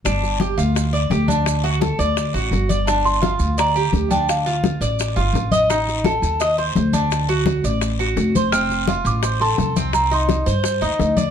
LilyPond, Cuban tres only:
\new Staff \with { instrumentName = "Cuban tres" } { \time 4/4 \key d \phrygian \tempo 4 = 170 d'4 g'8 f'4 d''8 g'8 d'8~ | d'8 fis'8 a'8 d''4 fis'4 d''8 | d'4 f'4 d''8 g'4 d'8~ | d'8 f'4 d''4 f'4 ees''8 |
ees'4 a'4 ees''8 c''4 d'8~ | d'8 fis'4 d''4 fis'4 c''8 | c'4 f'4 c''8 a'4 c'8~ | c'8 ees'4 c''4 ees'4 d''8 | }